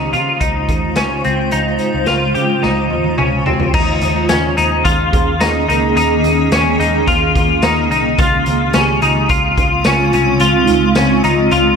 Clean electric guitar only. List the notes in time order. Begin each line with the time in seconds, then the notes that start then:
Already playing: D#4
0.13 F4
0.40 D#4
0.96 C#4
1.25 C4
1.52 D#4
2.07 F4
2.35 G4
2.63 D#4
3.18 C#4
3.46 C4
3.74 D#4
4.29 C#4
4.57 D#4
4.85 F4
5.41 D#4
5.69 D#4
5.97 D#4
6.52 C#4
6.80 D#4
7.08 F4
7.63 D#4
7.91 D#4
8.19 F4
8.74 C#4
9.02 D#4
9.30 F4
9.86 C#4
10.14 C#4
10.41 F4
10.96 C#4
11.24 D#4
11.52 F4